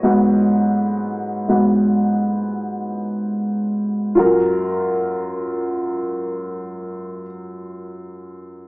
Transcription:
X:1
M:4/4
L:1/8
Q:1/4=53
K:F#
V:1 name="Upright piano"
d6 z2 | [EFA]8 |]
V:2 name="Upright piano" clef=bass
[G,,F,B,]3 [G,,F,B,] z4 | F,,8 |]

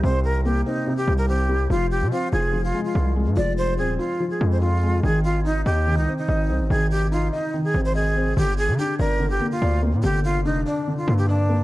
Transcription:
X:1
M:4/4
L:1/16
Q:1/4=144
K:Fdor
V:1 name="Flute"
c2 B2 G2 E3 G2 B G4 | F2 G2 F2 A3 F2 F4- F | d2 c2 A2 F3 A2 c F4 | A2 F2 E2 G3 E2 E4- E |
A2 G2 F2 E3 A2 c A4 | G2 A2 G2 B3 G2 F4- F | G2 F2 E2 D3 F2 G D4 |]
V:2 name="Felt piano"
[C,G,C]4 B,2 C2 C,2 G,2 C2 G,2 | F,4 C2 F2 F,2 A,2 F2 A,2 | F,4 C2 F2 F,2 A,2 F2 A,2 | E,4 E2 e2 E,2 C2 e2 C2 |
E,4 E2 e2 E,2 C2 e2 C2 | D,4 D2 d2 D,2 B,2 d2 B,2 | D,4 D2 d2 D,2 B,2 d2 B,2 |]
V:3 name="808-style bass" clef=bass
C,,6 z4 C,,6 | F,,,3 C, z2 F,,,4 z2 C,,3 A,, | F,,,4 E,,,2 z4 F,,6 | A,,,6 E,,3 C,, z2 A,,,2 C,, A,,, |
A,,,6 z4 A,,,6 | G,,,3 D, z2 G,,,4 z2 D,,3 B,, | G,,,4 F,,,2 z4 G,,6 |]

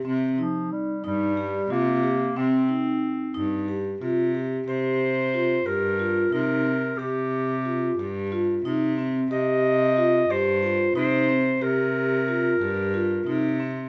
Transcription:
X:1
M:7/8
L:1/8
Q:1/4=91
K:Cm
V:1 name="Clarinet"
z F, G, G,2 B,2 | C4 z3 | c3 B2 B2 | G4 z3 |
e3 c2 c2 | B6 z |]
V:2 name="Vibraphone"
C E2 E G F G | C E2 E G F G | G2 F G F E C | G2 F G F E C |
G2 F G F E C | G2 F G F E C |]
V:3 name="Cello" clef=bass
C, z2 G,,2 C,2 | C, z2 G,,2 C,2 | C,3 G,,2 C,2 | C,3 G,,2 C,2 |
C,3 G,,2 C,2 | C,3 G,,2 C,2 |]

